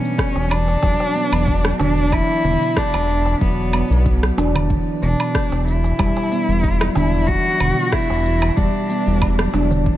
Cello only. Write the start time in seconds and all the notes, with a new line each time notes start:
Already playing: C#4
0.50 D4
1.80 D4
2.13 E4
2.78 D4
3.41 B3
5.02 D4
5.68 E4
6.96 E4
7.27 F#4
7.92 E4
8.57 D4